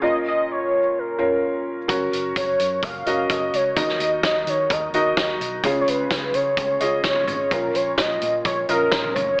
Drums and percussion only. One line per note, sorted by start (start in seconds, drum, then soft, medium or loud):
1.89 kick medium
1.89 closed hi-hat medium
2.13 closed hi-hat medium
2.36 kick loud
2.36 closed hi-hat medium
2.60 closed hi-hat medium
2.83 kick loud
2.83 closed hi-hat medium
3.06 closed hi-hat medium
3.29 kick medium
3.29 closed hi-hat medium
3.53 closed hi-hat medium
3.77 kick medium
3.77 closed hi-hat medium
3.88 snare soft
4.00 closed hi-hat medium
4.23 kick loud
4.23 snare medium
4.23 closed hi-hat medium
4.47 closed hi-hat medium
4.70 kick loud
4.70 closed hi-hat medium
4.94 closed hi-hat medium
5.17 kick medium
5.17 snare medium
5.17 closed hi-hat medium
5.41 closed hi-hat medium
5.64 kick medium
5.64 closed hi-hat medium
5.88 closed hi-hat medium
6.11 kick loud
6.11 snare medium
6.11 closed hi-hat medium
6.34 closed hi-hat medium
6.57 kick loud
6.57 closed hi-hat medium
6.80 closed hi-hat medium
7.03 kick medium
7.03 snare loud
7.03 closed hi-hat medium
7.15 floor tom medium
7.27 closed hi-hat medium
7.27 floor tom medium
7.51 kick medium
7.51 closed hi-hat medium
7.75 closed hi-hat medium
7.98 kick loud
7.98 snare medium
7.98 closed hi-hat medium
8.21 closed hi-hat medium
8.45 kick loud
8.45 closed hi-hat medium
8.69 closed hi-hat medium
8.91 kick medium
8.91 snare medium
8.91 closed hi-hat medium
9.04 floor tom medium
9.16 closed hi-hat medium
9.16 floor tom medium